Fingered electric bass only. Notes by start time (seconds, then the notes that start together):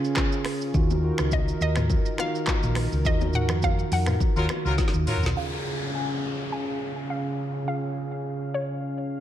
0.74 D#2
1.19 C#2
1.61 D#2
2.63 A#1
2.92 C#2
3.05 D#2
3.50 F2
3.91 F2
4.36 D#2
4.65 C#2
4.94 D#2
5.23 B1